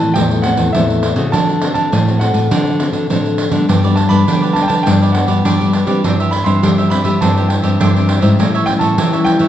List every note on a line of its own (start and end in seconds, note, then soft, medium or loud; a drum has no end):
0.00 0.13 A2 medium
0.00 0.11 E3 soft
0.00 0.12 E3 medium
0.00 0.12 A3 medium
0.00 0.12 C4 medium
0.00 0.12 E4 medium
0.00 0.12 A4 medium
0.00 0.12 A5 loud
0.14 0.53 E2 medium
0.14 0.72 A2 soft
0.14 0.41 E3 soft
0.14 0.41 A3 soft
0.14 0.41 C4 soft
0.14 0.41 E4 medium
0.14 0.41 A4 medium
0.14 0.45 G5 medium
0.14 pandeiro medium
0.31 pandeiro soft
0.42 0.69 E3 medium
0.42 0.70 A3 soft
0.42 0.70 C4 medium
0.42 0.70 E4 medium
0.42 0.70 A4 medium
0.42 0.71 F#5 medium
0.42 pandeiro medium
0.57 0.71 E2 medium
0.57 pandeiro medium
0.73 1.12 E2 medium
0.73 1.31 A2 medium
0.73 1.02 E3 medium
0.73 1.03 A3 soft
0.73 1.03 C4 soft
0.73 1.03 E4 medium
0.73 1.03 A4 medium
0.73 1.34 E5 medium
0.73 pandeiro medium
0.90 pandeiro soft
1.03 pandeiro medium
1.16 1.30 C#3 medium
1.16 1.57 C4 medium
1.16 1.57 F#4 medium
1.16 1.57 A4 medium
1.16 pandeiro soft
1.32 1.71 D3 medium
1.32 1.90 D3 soft
1.32 1.73 A5 medium
1.32 pandeiro medium
1.49 pandeiro soft
1.62 1.90 C4 medium
1.62 1.90 F#4 soft
1.62 1.90 A4 medium
1.62 pandeiro medium
1.74 1.89 D3 medium
1.74 2.17 A5 medium
1.74 pandeiro soft
1.92 2.30 A2 medium
1.92 2.48 A2 medium
1.92 pandeiro medium
2.08 2.18 C4 medium
2.08 2.18 F#4 medium
2.08 2.18 A4 medium
2.08 pandeiro soft
2.19 2.46 C4 medium
2.19 2.46 F#4 medium
2.19 2.47 A4 medium
2.19 3.05 F#5 medium
2.19 pandeiro medium
2.34 2.47 A2 medium
2.34 pandeiro soft
2.51 2.89 D3 loud
2.51 3.08 D3 soft
2.51 2.69 C4 medium
2.51 2.69 F#4 soft
2.51 2.69 A4 soft
2.51 pandeiro medium
2.67 pandeiro soft
2.80 3.05 C4 soft
2.80 3.05 F#4 medium
2.80 3.06 A4 medium
2.80 pandeiro medium
2.93 3.06 D3 medium
2.93 pandeiro soft
3.10 3.66 A2 soft
3.10 3.47 D3 medium
3.10 3.38 C4 soft
3.10 3.38 F#4 medium
3.10 3.38 A4 medium
3.10 pandeiro medium
3.26 pandeiro soft
3.38 pandeiro medium
3.51 3.65 D3 medium
3.51 3.84 G3 medium
3.51 3.84 B3 medium
3.51 3.84 D4 medium
3.51 pandeiro medium
3.68 4.06 G2 medium
3.68 4.25 G2 soft
3.68 3.82 D4 soft
3.68 3.82 G4 soft
3.68 3.83 B4 medium
3.68 3.83 D5 medium
3.68 pandeiro medium
3.84 4.24 G3 medium
3.84 4.24 B3 medium
3.84 4.24 D4 medium
3.84 3.96 G4 medium
3.84 3.96 B4 medium
3.84 3.96 D5 medium
3.84 pandeiro soft
3.96 4.12 A5 medium
3.96 muted cavaquinho stroke soft
3.96 pandeiro medium
4.09 4.24 G2 medium
4.09 4.26 G4 medium
4.09 4.25 B4 medium
4.09 4.25 D5 medium
4.09 4.56 B5 loud
4.09 pandeiro soft
4.27 4.84 D3 medium
4.27 4.65 D3 medium
4.27 4.52 G3 medium
4.27 4.53 B3 medium
4.27 4.41 D4 soft
4.27 4.53 D4 medium
4.27 4.41 G4 medium
4.27 4.41 B4 soft
4.27 4.40 D5 medium
4.27 pandeiro medium
4.42 4.69 G4 medium
4.42 4.68 B4 medium
4.42 4.67 D5 medium
4.42 pandeiro soft
4.53 4.74 G3 medium
4.53 4.74 B3 medium
4.53 4.74 D4 medium
4.53 4.62 A5 medium
4.53 pandeiro medium
4.63 4.70 G5 medium
4.68 4.83 D3 medium
4.68 4.84 G4 medium
4.68 4.84 B4 medium
4.68 4.84 D5 medium
4.68 4.84 A5 medium
4.68 pandeiro medium
4.83 5.24 G2 loud
4.83 5.42 G2 soft
4.83 5.04 G3 soft
4.83 5.04 B3 soft
4.83 5.00 D4 soft
4.83 5.00 G4 soft
4.83 5.15 G5 medium
4.83 pandeiro medium
4.87 5.04 D4 medium
4.87 5.00 B4 soft
4.87 5.00 D5 soft
5.02 5.14 G4 soft
5.02 5.14 B4 medium
5.02 5.14 D5 medium
5.02 pandeiro soft
5.12 5.55 G3 medium
5.12 5.55 B3 medium
5.12 5.55 D4 medium
5.12 5.41 F#5 medium
5.12 muted cavaquinho stroke soft
5.12 pandeiro medium
5.27 5.42 G2 medium
5.27 5.43 G4 medium
5.27 5.43 B4 medium
5.27 5.43 D5 medium
5.27 pandeiro soft
5.45 5.83 G2 medium
5.45 6.02 D3 soft
5.45 5.72 D4 medium
5.45 5.73 G4 medium
5.45 5.73 B4 medium
5.45 5.74 D5 medium
5.45 pandeiro medium
5.61 5.85 G3 medium
5.61 5.86 B3 medium
5.61 5.86 D4 medium
5.61 pandeiro soft
5.73 5.88 D4 soft
5.73 5.88 G4 soft
5.73 5.87 B4 medium
5.73 5.86 D5 soft
5.73 pandeiro medium
5.87 6.13 E3 medium
5.87 6.00 G3 medium
5.87 6.13 C4 medium
5.87 6.14 D4 medium
5.87 6.03 G4 soft
5.87 6.03 B4 medium
5.87 6.02 D5 medium
5.87 pandeiro medium
6.04 6.42 G2 medium
6.04 6.60 G2 medium
6.04 6.18 D4 soft
6.04 6.18 G4 medium
6.04 6.18 C5 soft
6.04 6.19 E5 medium
6.04 pandeiro medium
6.20 6.32 G4 medium
6.20 6.33 C5 medium
6.20 6.33 E5 medium
6.20 pandeiro soft
6.31 6.46 B5 medium
6.31 muted cavaquinho stroke soft
6.31 pandeiro medium
6.44 6.59 G2 medium
6.44 6.86 E3 soft
6.44 6.87 C4 medium
6.44 6.87 D4 medium
6.44 6.61 G4 soft
6.44 6.61 C5 medium
6.44 6.61 E5 medium
6.44 6.87 C6 medium
6.44 pandeiro medium
6.63 7.19 G2 medium
6.63 7.00 G3 medium
6.63 6.77 D4 soft
6.63 6.77 G4 soft
6.63 6.77 C5 soft
6.63 6.77 E5 soft
6.63 pandeiro medium
6.78 7.04 G4 medium
6.78 7.04 C5 medium
6.78 7.03 E5 medium
6.78 pandeiro soft
6.90 7.09 E3 medium
6.90 7.09 C4 medium
6.90 7.10 D4 medium
6.90 7.22 B5 medium
6.90 pandeiro medium
7.04 7.18 G3 medium
7.04 7.20 G4 soft
7.04 7.20 C5 medium
7.04 7.19 E5 medium
7.04 pandeiro medium
7.21 7.59 G2 medium
7.21 7.78 G2 soft
7.21 7.50 E3 soft
7.21 7.50 C4 medium
7.21 7.35 D4 soft
7.21 7.50 D4 soft
7.21 7.36 G4 soft
7.21 7.36 C5 medium
7.21 7.35 E5 medium
7.21 7.49 A5 medium
7.21 pandeiro medium
7.37 7.48 G4 medium
7.37 7.48 C5 medium
7.37 7.49 E5 medium
7.37 pandeiro soft
7.48 7.55 G5 medium
7.48 muted cavaquinho stroke soft
7.48 pandeiro medium
7.62 7.77 G2 medium
7.62 7.90 E3 medium
7.62 7.90 C4 medium
7.62 7.90 D4 medium
7.62 7.79 G4 medium
7.62 7.78 C5 medium
7.62 7.78 E5 medium
7.62 pandeiro soft
7.80 8.18 G2 medium
7.80 8.37 G2 medium
7.80 8.07 D4 medium
7.80 8.07 G4 medium
7.80 8.08 C5 medium
7.80 8.08 E5 medium
7.80 pandeiro medium
7.96 8.21 E3 medium
7.96 8.21 C4 medium
7.96 8.21 D4 medium
7.96 pandeiro soft
8.08 8.23 D4 soft
8.08 8.22 G4 soft
8.08 8.21 C5 soft
8.08 8.20 E5 medium
8.08 pandeiro medium
8.21 8.36 G#2 medium
8.21 8.67 G3 medium
8.21 8.67 C#4 medium
8.21 8.67 E4 medium
8.21 8.37 G4 medium
8.21 8.37 C5 medium
8.21 8.37 E5 medium
8.21 pandeiro soft
8.39 8.77 A2 medium
8.39 8.96 A2 medium
8.39 8.53 G4 medium
8.39 8.53 A4 medium
8.39 8.53 C#5 soft
8.39 8.53 E5 medium
8.39 pandeiro medium
8.54 8.66 A4 medium
8.54 8.66 C#5 medium
8.54 8.67 E5 medium
8.54 pandeiro soft
8.66 9.08 G3 medium
8.66 9.08 C#4 medium
8.66 9.08 E4 medium
8.66 8.71 G5 loud
8.66 muted cavaquinho stroke soft
8.66 pandeiro medium
8.79 8.95 A2 medium
8.79 8.97 A4 medium
8.79 8.96 C#5 medium
8.79 8.96 E5 medium
8.79 9.27 A5 medium
8.79 pandeiro medium
8.98 9.36 E3 medium
8.98 9.48 E3 medium
8.98 9.12 G4 soft
8.98 9.12 A4 soft
8.98 9.12 C#5 medium
8.98 9.12 E5 medium
8.98 pandeiro medium
9.13 9.48 G3 medium
9.13 9.48 C#4 medium
9.13 9.48 E4 medium
9.13 9.40 A4 soft
9.13 9.39 C#5 medium
9.13 9.38 E5 medium
9.13 pandeiro soft
9.25 9.48 G5 loud
9.25 pandeiro medium
9.39 9.48 E3 medium
9.39 9.48 A4 medium
9.39 9.48 C#5 medium
9.39 9.48 E5 medium
9.39 pandeiro soft